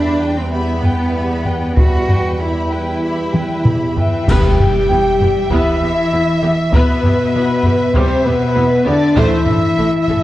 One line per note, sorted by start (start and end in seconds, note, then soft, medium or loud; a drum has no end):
0.00 4.04 E2 medium
0.00 3.80 G3 medium
0.00 0.36 D4 loud
0.00 0.22 G4 medium
0.00 3.80 B4 medium
0.00 0.21 E5 medium
0.00 0.22 B5 medium
0.20 0.52 B4 medium
0.20 0.52 G5 medium
0.20 0.53 G5 medium
0.37 0.52 C4 medium
0.51 1.77 B3 medium
0.51 0.81 G4 medium
0.51 0.80 E5 medium
0.51 0.81 B5 medium
0.83 1.14 B4 medium
0.83 1.14 G5 medium
0.83 1.15 G5 soft
0.83 taiko low soft
1.12 1.46 G4 medium
1.12 1.45 E5 medium
1.12 1.47 B5 medium
1.44 1.77 B4 soft
1.44 1.76 G5 soft
1.44 1.78 G5 soft
1.44 taiko low soft
1.75 2.06 G3 medium
1.75 2.40 F#4 medium
1.75 2.05 E5 medium
1.75 2.07 B5 medium
1.75 taiko medium
2.06 2.40 B4 soft
2.06 2.39 G5 soft
2.06 2.41 G5 soft
2.06 taiko low medium
2.40 3.97 E4 medium
2.40 2.71 G4 medium
2.40 2.71 E5 medium
2.40 2.72 B5 soft
2.71 3.03 B4 soft
2.71 3.03 G5 soft
3.03 3.32 G4 soft
3.03 3.33 E5 soft
3.03 3.32 B5 soft
3.34 3.66 B4 soft
3.34 3.65 G5 soft
3.34 taiko mid medium
3.65 3.97 G4 soft
3.65 3.95 E5 soft
3.65 3.97 B5 soft
3.65 taiko low-mid medium
3.96 4.26 E3 medium
3.96 4.26 E4 medium
3.96 4.28 B4 medium
3.96 4.26 E5 medium
3.96 4.25 G5 medium
3.96 4.28 G5 soft
3.96 taiko low medium
4.26 5.16 E2 loud
4.26 4.36 E2 medium
4.26 5.50 G3 medium
4.26 4.57 B3 medium
4.26 5.50 G4 loud
4.26 4.57 B4 medium
4.26 9.12 E5 medium
4.26 5.50 G5 medium
4.26 5.51 G5 medium
4.26 concert bass drum medium
4.26 taiko medium
4.26 crash medium
4.26 impact medium
4.59 4.67 E2 medium
4.59 4.69 B3 soft
4.59 4.69 G4 medium
4.59 taiko low medium
4.90 4.98 E2 medium
4.90 4.98 B3 medium
4.90 4.99 E4 medium
5.20 5.29 E2 medium
5.20 5.29 B3 soft
5.20 5.29 G4 medium
5.20 taiko low medium
5.50 5.58 E2 medium
5.50 6.73 E3 medium
5.50 5.79 B3 medium
5.50 6.73 E4 loud
5.50 5.79 B4 medium
5.50 6.72 E5 medium
5.50 6.73 E5 medium
5.50 6.73 E5 loud
5.50 taiko medium
5.82 5.90 E2 medium
5.82 5.91 B3 medium
5.82 5.91 G4 medium
6.11 6.19 E2 medium
6.11 6.21 B3 medium
6.11 6.21 E4 medium
6.42 6.50 E2 medium
6.42 6.51 B3 medium
6.42 6.51 G4 medium
6.73 6.81 E2 medium
6.73 7.95 B2 medium
6.73 7.93 B3 loud
6.73 7.02 B3 medium
6.73 7.92 B4 medium
6.73 7.95 B4 medium
6.73 7.93 B4 medium
6.73 7.02 B4 medium
6.73 taiko loud
7.03 7.11 E2 medium
7.03 7.13 B3 medium
7.03 7.13 G4 medium
7.03 taiko low medium
7.35 7.43 E2 medium
7.35 7.44 B3 medium
7.35 7.43 E4 medium
7.64 7.73 E2 medium
7.64 7.73 B3 medium
7.64 7.72 G4 medium
7.64 taiko low medium
7.94 8.04 E2 medium
7.94 8.25 C3 medium
7.94 8.23 G3 medium
7.94 8.25 C4 loud
7.94 8.23 G4 medium
7.94 8.25 C5 medium
7.94 taiko medium
8.24 8.34 E2 medium
8.24 8.85 B2 medium
8.24 8.33 B3 medium
8.24 8.86 B3 loud
8.24 8.33 G4 medium
8.24 8.85 B4 medium
8.24 8.86 B4 medium
8.24 8.87 B4 medium
8.55 8.64 E2 medium
8.55 8.63 B3 medium
8.55 8.63 E4 medium
8.84 8.95 E2 medium
8.84 9.16 D3 medium
8.84 8.94 B3 medium
8.84 9.17 D4 loud
8.84 8.93 G4 medium
8.84 9.15 D5 medium
8.84 9.16 D5 loud
8.84 9.16 D5 medium
9.14 9.25 A1 medium
9.14 10.23 E3 medium
9.14 9.44 A3 loud
9.14 10.23 E4 loud
9.14 9.45 C5 loud
9.14 10.10 E5 loud
9.14 10.23 E5 medium
9.14 taiko loud
9.47 9.56 A1 medium
9.47 9.55 A3 medium
9.47 9.55 A4 medium
9.47 taiko low medium
9.78 9.86 A1 medium
9.78 9.86 A3 medium
9.78 9.86 E4 medium
10.08 10.16 A1 medium
10.08 10.17 A3 medium
10.08 10.17 A4 medium
10.08 taiko low medium